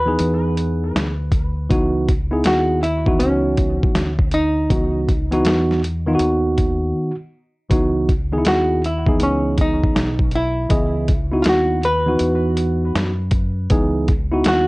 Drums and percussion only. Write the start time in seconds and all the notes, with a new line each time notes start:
0.19 closed hi-hat
0.57 closed hi-hat
0.96 snare, closed hi-hat
1.32 kick, closed hi-hat
1.70 kick, closed hi-hat
2.08 kick, closed hi-hat
2.44 snare, closed hi-hat
2.84 closed hi-hat
3.06 kick
3.20 closed hi-hat
3.57 kick, closed hi-hat
3.83 kick
3.95 snare, closed hi-hat
4.19 kick
4.31 closed hi-hat
4.70 kick, closed hi-hat
5.09 kick, closed hi-hat
5.32 closed hi-hat
5.45 snare, closed hi-hat
5.71 snare
5.84 closed hi-hat
6.19 closed hi-hat
6.58 kick, closed hi-hat
7.71 kick, closed hi-hat
8.09 kick, closed hi-hat
8.45 snare, closed hi-hat
8.84 closed hi-hat
9.06 kick
9.20 closed hi-hat
9.58 kick, closed hi-hat
9.84 kick
9.96 snare, closed hi-hat
10.19 kick
10.31 closed hi-hat
10.70 kick, closed hi-hat
11.08 kick, closed hi-hat
11.44 snare, closed hi-hat
11.83 closed hi-hat
12.19 closed hi-hat
12.57 closed hi-hat
12.95 snare, closed hi-hat
13.31 kick, closed hi-hat
13.70 kick, closed hi-hat
14.08 kick, closed hi-hat
14.44 snare, closed hi-hat